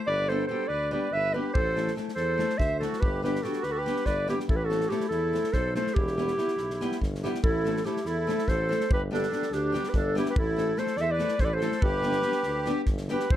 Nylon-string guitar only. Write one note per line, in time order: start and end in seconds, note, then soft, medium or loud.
0.30 0.43 G3 medium
0.30 0.44 B3 medium
0.30 0.44 D4 medium
0.30 0.44 G4 medium
0.49 0.63 G3 medium
0.49 0.63 B3 medium
0.49 0.64 D4 medium
0.49 0.64 G4 medium
0.91 1.06 G3 medium
0.91 1.06 B3 medium
0.91 1.06 D4 medium
0.91 1.07 G4 medium
1.34 1.49 G3 medium
1.34 1.49 B3 medium
1.34 1.49 D4 medium
1.34 1.49 G4 medium
1.75 1.90 A3 medium
1.75 1.91 C4 medium
1.75 1.91 E4 medium
1.75 1.91 A4 medium
1.96 2.10 A3 medium
1.96 2.11 C4 medium
1.96 2.11 E4 medium
1.96 2.11 A4 medium
2.38 2.53 A3 medium
2.38 2.53 C4 medium
2.38 2.53 E4 medium
2.38 2.54 A4 medium
2.81 2.96 A3 medium
2.81 2.96 C4 medium
2.81 2.96 E4 medium
2.81 2.97 A4 medium
3.22 3.37 G3 medium
3.22 3.38 B3 medium
3.22 3.38 D4 medium
3.22 3.38 G4 medium
3.43 3.58 G3 medium
3.43 3.58 B3 medium
3.43 3.58 D4 medium
3.43 3.58 G4 medium
3.86 4.00 G3 medium
3.86 4.01 B3 medium
3.86 4.01 D4 medium
3.86 4.01 G4 medium
4.28 4.43 G3 medium
4.28 4.43 B3 medium
4.28 4.43 D4 medium
4.28 4.44 G4 medium
4.70 4.84 A3 medium
4.70 4.85 C4 medium
4.70 4.85 E4 medium
4.70 4.85 A4 medium
4.90 5.05 A3 medium
4.90 5.05 C4 medium
4.90 5.05 E4 medium
4.90 5.06 A4 medium
5.33 5.47 A3 medium
5.33 5.48 C4 medium
5.33 5.48 E4 medium
5.33 5.48 A4 medium
5.75 5.90 A3 medium
5.75 5.90 C4 medium
5.75 5.90 E4 medium
5.75 5.91 A4 medium
6.17 6.32 G3 medium
6.17 6.32 B3 medium
6.17 6.32 E4 medium
6.17 6.33 G4 medium
6.38 6.52 G3 medium
6.38 6.52 B3 soft
6.38 6.52 E4 medium
6.38 6.53 G4 medium
6.81 6.95 G3 medium
6.81 6.95 B3 medium
6.81 6.95 E4 medium
6.81 6.95 G4 medium
7.23 7.37 G3 medium
7.23 7.38 B3 medium
7.23 7.38 E4 medium
7.23 7.38 G4 medium
7.64 7.78 A3 medium
7.64 7.79 C4 medium
7.64 7.79 E4 medium
7.64 7.80 A4 medium
7.84 7.98 A3 medium
7.84 7.99 C4 medium
7.84 7.99 E4 medium
7.84 7.99 A4 medium
8.27 8.41 A3 medium
8.27 8.41 C4 medium
8.27 8.42 E4 medium
8.27 8.42 A4 medium
8.69 8.83 A3 medium
8.69 8.84 C4 medium
8.69 8.84 E4 medium
8.69 8.84 A4 medium
9.11 9.25 G3 medium
9.11 9.25 B3 medium
9.11 9.26 D4 medium
9.11 9.26 G4 medium
9.31 9.45 G3 medium
9.31 9.45 B3 medium
9.31 9.46 D4 medium
9.31 9.46 G4 medium
9.72 9.87 G3 medium
9.72 9.87 B3 medium
9.72 9.88 D4 medium
9.72 9.88 G4 medium
10.15 10.30 G3 medium
10.15 10.30 B3 medium
10.15 10.30 D4 medium
10.15 10.31 G4 medium
10.56 10.71 A3 medium
10.56 10.72 C4 medium
10.56 10.72 E4 medium
10.56 10.72 A4 medium
10.77 10.91 A3 medium
10.77 10.92 C4 medium
10.77 10.92 E4 medium
10.77 10.92 A4 medium
11.19 11.34 A3 medium
11.19 11.34 C4 medium
11.19 11.34 E4 medium
11.19 11.34 A4 medium
11.62 11.77 A3 medium
11.62 11.77 C4 medium
11.62 11.77 E4 medium
11.62 11.77 A4 medium
12.02 12.17 G3 medium
12.02 12.18 B3 medium
12.02 12.18 D4 medium
12.02 12.18 G4 medium
12.23 12.38 G3 medium
12.23 12.38 B3 medium
12.23 12.38 D4 medium
12.23 12.38 G4 medium
12.65 12.80 G3 medium
12.65 12.81 B3 medium
12.65 12.81 D4 medium
12.65 12.81 G4 medium
13.09 13.23 G3 medium
13.09 13.24 B3 medium
13.09 13.24 D4 medium
13.09 13.24 G4 medium